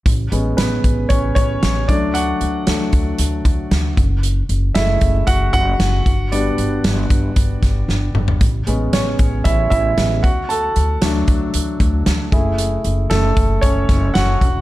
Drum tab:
HH |x-x-x-x-x-x-x-x-|x-x-x-x-x-x-x-x-|x-x-x-x-x-x-x-x-|x-x-x-x-x-x-----|
SD |----o-------o---|----o-------o---|----o-------o---|----o-----o-o---|
T2 |----------------|----------------|----------------|--------------o-|
FT |----------------|----------------|----------------|---------------o|
BD |o-----o-o-o---o-|------o---o---o-|------o-o-o---o-|------o-o-o-----|

HH |x-x-x-x-x-x-x-x-|x-x-x-x-x-x-x-x-|x-x-x-x-x-x-x-x-|
SD |----o-------o---|----o-------o---|----o-----o-o---|
T2 |----------------|----------------|----------------|
FT |----------------|----------------|----------------|
BD |o-----o-o-o---o-|------o---o---o-|------o-o-o---o-|